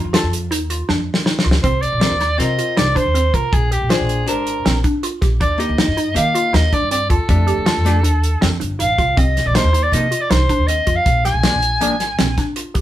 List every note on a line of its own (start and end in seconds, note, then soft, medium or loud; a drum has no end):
0.00 0.11 D#4 medium
0.00 0.15 F4 medium
0.04 0.12 F2 medium
0.13 0.45 F4 medium
0.13 0.32 A4 medium
0.13 snare loud
0.13 closed hi-hat medium
0.23 0.51 F2 medium
0.33 closed hi-hat medium
0.51 0.82 D#2 loud
0.51 0.67 D#4 medium
0.51 closed hi-hat medium
0.70 0.86 F4 medium
0.70 closed hi-hat medium
0.89 1.04 F2 medium
0.89 1.20 D4 medium
0.89 snare medium
1.14 snare medium
1.26 1.42 D#4 medium
1.26 snare medium
1.39 snare medium
1.44 1.61 C#2 medium
1.44 1.60 F4 medium
1.51 snare medium
1.63 1.87 C2 medium
1.63 1.95 C4 medium
1.63 1.83 C5 medium
1.63 kick medium
1.63 closed hi-hat medium
1.82 2.39 D5 medium
1.82 closed hi-hat soft
1.92 2.00 A#1 medium
2.00 2.14 C4 soft
2.00 2.17 D#4 medium
2.00 2.14 F4 soft
2.00 2.15 A#4 medium
2.00 snare loud
2.00 closed hi-hat medium
2.11 2.34 D#2 medium
2.20 2.52 D#4 medium
2.20 snare soft
2.20 closed hi-hat soft
2.38 2.55 C3 medium
2.38 2.91 C4 medium
2.38 2.92 F4 medium
2.38 2.92 A#4 medium
2.38 2.79 D#5 medium
2.38 snare soft
2.38 closed hi-hat medium
2.59 2.74 F4 medium
2.59 closed hi-hat medium
2.77 2.92 C2 medium
2.77 2.92 D#4 medium
2.77 2.98 D5 medium
2.77 snare medium
2.77 closed hi-hat medium
2.95 3.11 D4 medium
2.95 3.36 C5 medium
2.95 kick medium
2.95 closed hi-hat medium
3.05 3.29 D#2 medium
3.14 3.30 C4 medium
3.14 closed hi-hat medium
3.34 3.41 C2 medium
3.34 3.65 F4 medium
3.34 3.55 A#4 medium
3.34 kick medium
3.34 closed hi-hat medium
3.53 3.76 A#1 medium
3.53 3.72 G#4 medium
3.53 kick medium
3.53 closed hi-hat medium
3.71 3.87 G4 medium
3.71 3.93 G4 medium
3.71 closed hi-hat medium
3.82 3.89 A#1 medium
3.89 4.26 D4 medium
3.89 4.21 F4 medium
3.89 4.28 G#4 medium
3.89 4.27 C5 medium
3.89 4.43 G5 soft
3.89 snare loud
3.89 closed hi-hat medium
4.00 4.29 A#1 medium
4.09 closed hi-hat medium
4.27 4.59 G#1 medium
4.27 4.80 D4 medium
4.27 4.59 D4 medium
4.27 4.80 G4 soft
4.27 4.81 A#4 medium
4.27 4.81 C5 medium
4.27 closed hi-hat medium
4.47 closed hi-hat medium
4.65 4.81 A#1 medium
4.65 4.81 C4 medium
4.65 snare loud
4.65 closed hi-hat medium
4.84 5.00 D4 medium
4.84 kick medium
4.84 closed hi-hat medium
5.03 5.19 F4 medium
5.03 closed hi-hat medium
5.22 5.37 A#1 medium
5.22 5.37 G4 medium
5.22 kick medium
5.22 snare soft
5.22 closed hi-hat medium
5.40 5.64 D#2 medium
5.40 5.72 D4 medium
5.40 5.61 D5 medium
5.40 kick medium
5.40 closed hi-hat medium
5.58 5.85 A#3 medium
5.58 5.85 D#4 medium
5.58 5.86 G4 medium
5.58 6.16 D#5 medium
5.58 closed hi-hat medium
5.69 5.77 D2 medium
5.78 5.94 D#4 medium
5.78 snare loud
5.78 closed hi-hat medium
5.88 6.11 G2 medium
5.97 6.28 D#4 medium
5.97 closed hi-hat medium
6.14 6.31 D#3 medium
6.14 6.68 A#3 medium
6.14 6.68 D#4 medium
6.14 6.69 G4 medium
6.14 6.56 F5 medium
6.14 closed hi-hat medium
6.35 6.50 F4 medium
6.35 closed hi-hat medium
6.53 6.69 D#2 medium
6.53 6.69 D#4 medium
6.53 6.75 D#5 medium
6.53 snare medium
6.53 closed hi-hat medium
6.73 6.88 D4 medium
6.73 6.91 D5 medium
6.73 kick medium
6.73 closed hi-hat medium
6.82 7.05 G2 medium
6.91 7.07 C4 medium
6.91 7.09 D5 medium
6.91 closed hi-hat medium
7.10 7.18 D#2 medium
7.10 7.41 F4 medium
7.10 8.57 A4 medium
7.10 kick medium
7.10 closed hi-hat medium
7.29 7.52 F2 medium
7.29 7.82 A3 medium
7.29 7.82 D4 medium
7.29 7.82 G4 medium
7.29 kick loud
7.29 closed hi-hat medium
7.47 7.63 G4 medium
7.47 closed hi-hat medium
7.57 7.65 F2 medium
7.66 7.97 F4 medium
7.66 snare loud
7.66 closed hi-hat medium
7.77 8.05 F2 medium
7.85 7.98 A3 medium
7.85 7.99 D4 medium
7.85 7.99 G4 medium
7.85 snare soft
7.85 closed hi-hat medium
8.03 8.36 D#2 medium
8.03 8.35 D4 medium
8.03 closed hi-hat medium
8.23 closed hi-hat medium
8.41 8.58 F2 medium
8.41 8.57 C4 medium
8.41 snare loud
8.41 closed hi-hat medium
8.60 8.78 G1 medium
8.60 8.76 D4 medium
8.60 closed hi-hat soft
8.79 8.97 A1 medium
8.79 8.95 D#4 medium
8.79 9.19 F5 medium
8.79 closed hi-hat medium
8.98 9.16 C2 medium
8.98 9.14 F4 medium
8.98 kick medium
8.98 closed hi-hat medium
9.17 9.40 C2 medium
9.17 9.48 C4 medium
9.17 9.48 D#5 medium
9.17 kick loud
9.17 closed hi-hat medium
9.37 snare soft
9.37 closed hi-hat medium
9.46 9.53 A#1 medium
9.46 9.57 D5 medium
9.54 9.68 F3 soft
9.54 9.68 A#3 soft
9.54 9.70 D#4 medium
9.54 9.69 D#4 medium
9.54 9.85 C5 medium
9.54 snare medium
9.54 closed hi-hat medium
9.64 9.87 D#2 medium
9.73 10.05 D#4 medium
9.73 closed hi-hat medium
9.83 9.94 D5 medium
9.92 10.08 C3 medium
9.92 10.06 F3 medium
9.92 10.06 A#3 medium
9.92 10.07 D#4 medium
9.92 10.22 D#5 medium
9.92 closed hi-hat medium
10.11 10.27 F4 medium
10.11 closed hi-hat medium
10.21 10.32 D5 medium
10.30 10.46 C2 medium
10.30 10.46 D#4 medium
10.30 10.69 C5 medium
10.30 snare loud
10.30 closed hi-hat medium
10.49 10.65 D4 medium
10.49 kick medium
10.49 closed hi-hat medium
10.59 10.82 D#2 medium
10.67 10.84 C4 medium
10.67 10.97 D#5 medium
10.67 closed hi-hat medium
10.87 10.95 F2 medium
10.87 11.18 F4 medium
10.87 kick medium
10.87 closed hi-hat medium
10.96 11.24 F5 medium
11.06 11.29 A#1 medium
11.06 kick medium
11.06 closed hi-hat medium
11.25 11.40 G4 medium
11.25 12.45 G#5 loud
11.25 snare soft
11.25 closed hi-hat medium
11.34 11.42 A#1 medium
11.43 11.57 F3 soft
11.43 11.57 A#3 soft
11.43 11.58 D4 medium
11.43 11.75 F4 medium
11.43 snare loud
11.43 closed hi-hat medium
11.53 11.81 A#1 medium
11.62 closed hi-hat medium
11.81 12.12 G#1 medium
11.81 11.94 F3 medium
11.81 11.94 A#3 medium
11.81 12.12 D4 medium
11.81 11.95 D4 medium
11.81 closed hi-hat medium
12.00 snare soft
12.00 closed hi-hat medium
12.19 12.35 A#1 medium
12.19 12.34 C4 medium
12.19 snare medium
12.19 closed hi-hat medium
12.38 12.53 D4 medium
12.38 kick medium
12.38 snare soft
12.38 closed hi-hat medium
12.56 12.72 F4 medium
12.56 closed hi-hat medium
12.74 12.81 D2 medium
12.74 12.81 G4 medium
12.74 kick medium
12.74 closed hi-hat medium